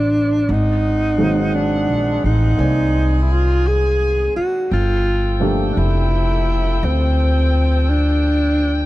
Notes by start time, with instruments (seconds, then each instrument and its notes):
Already playing: upright bass A1, upright piano F3 A3 C4 D4 E5, saxophone section D4 C5 D5, alto saxophone D4
0.48 upright bass G#1, saxophone section C4 G#4 F#5
0.52 alto saxophone D#4
1.18 upright piano D#3 F#3 G#3 A#3 C4
1.55 alto saxophone D4
1.89 upright bass A#1
2.24 upright bass A1, alto saxophone D#4
2.57 upright bass C2, upright piano A#3 C4 D5, saxophone section G#5
3.22 alto saxophone E4
3.32 alto saxophone F4
3.68 alto saxophone G#4
4.36 alto saxophone F#4, muted upright bass stroke
4.70 upright bass G1, saxophone section F3 A4 G5, alto saxophone F4
5.40 upright piano F3 A3 A#3 D4 G4
5.73 alto saxophone D4
5.77 upright bass F1, alto saxophone E4
6.83 upright bass D2, alto saxophone C4
7.90 alto saxophone D4